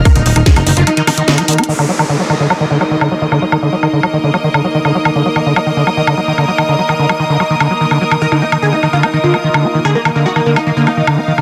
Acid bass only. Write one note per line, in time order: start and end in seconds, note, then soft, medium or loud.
0.05 0.10 D#3 medium
0.16 0.23 D3 medium
0.26 0.29 F#3 medium
0.36 0.41 D#3 medium
0.46 0.53 D3 medium
0.56 0.59 F#3 medium
0.67 0.71 D#3 medium
0.77 0.84 D3 medium
0.87 0.90 F#3 medium
0.97 1.02 D#3 medium
1.07 1.10 D#3 medium
1.18 1.22 D#3 medium
1.28 1.39 D3 loud
1.38 1.43 F#3 medium
1.48 1.60 D#3 medium
1.58 1.63 D#4 loud
1.69 1.73 D#3 medium
1.79 1.86 D3 medium
1.89 1.92 F#3 medium
1.99 2.04 D#3 medium
2.09 2.17 D3 medium
2.20 2.23 F#3 medium
2.30 2.35 D#3 medium
2.40 2.47 D3 medium
2.50 2.53 F#3 medium
2.60 2.65 D#3 medium
2.71 2.78 D3 medium
2.81 2.84 F#3 medium
2.91 2.96 D#3 medium
3.01 3.09 D3 medium
3.11 3.14 F#3 medium
3.22 3.27 D#3 medium
3.32 3.39 D3 medium
3.42 3.45 F#3 medium
3.52 3.57 D#3 medium
3.62 3.70 D3 medium
3.73 3.76 F#3 medium
3.83 3.88 D#3 medium
3.93 4.00 D3 medium
4.03 4.06 F#3 medium
4.13 4.18 D#3 medium
4.24 4.31 D3 medium
4.34 4.37 F#3 medium
4.44 4.49 D#3 medium
4.54 4.62 D3 medium
4.64 4.67 F#3 medium
4.75 4.80 D#3 medium
4.85 4.92 D3 medium
4.95 4.98 F#3 medium
5.05 5.10 D#3 medium
5.16 5.23 D3 medium
5.26 5.29 F#3 medium
5.36 5.41 D#3 medium
5.46 5.53 D3 medium
5.56 5.59 F#3 medium
5.67 5.71 D#3 medium
5.77 5.84 D3 medium
5.87 5.90 F#3 medium
5.97 6.02 D#3 medium
6.07 6.15 D3 medium
6.18 6.20 F#3 medium
6.28 6.33 D#3 medium
6.38 6.45 D3 medium
6.48 6.51 F#3 medium
6.58 6.63 D#3 medium
6.69 6.76 D3 medium
6.79 6.82 F#3 medium
6.89 6.94 D#3 medium
6.99 7.06 D3 medium
7.09 7.12 F#3 medium
7.20 7.24 D#3 medium
7.30 7.37 D3 medium
7.40 7.43 F#3 medium
7.50 7.55 D#3 medium
7.60 7.68 D3 medium
7.71 7.74 F#3 medium
7.81 7.86 D#3 medium
7.91 7.98 D3 medium
8.01 8.04 F#3 medium
8.11 8.16 D#3 medium
8.22 8.27 D#3 medium
8.32 8.43 D3 medium
8.42 8.45 D#4 medium
8.52 8.57 D#3 medium
8.62 8.74 D3 medium
8.73 8.76 D#4 medium
8.83 8.88 D#3 medium
8.93 9.05 D3 medium
9.03 9.06 D#4 medium
9.13 9.18 D#3 medium
9.24 9.35 D3 medium
9.34 9.37 D#4 medium
9.44 9.49 D#3 medium
9.54 9.66 D3 medium
9.64 9.67 D#4 medium
9.75 9.80 D#3 medium
9.85 9.97 D3 medium
9.95 9.98 D#4 medium
10.05 10.10 D#3 medium
10.16 10.27 D3 medium
10.26 10.29 D#4 medium
10.36 10.41 D#3 medium
10.46 10.58 D3 medium
10.56 10.59 D#4 medium
10.67 10.71 D#3 medium
10.77 10.88 D3 medium
10.87 10.90 D#4 medium
10.97 11.02 D#3 medium
11.07 11.19 D3 medium
11.18 11.20 D#4 medium
11.28 11.33 D#3 medium
11.38 11.42 D3 medium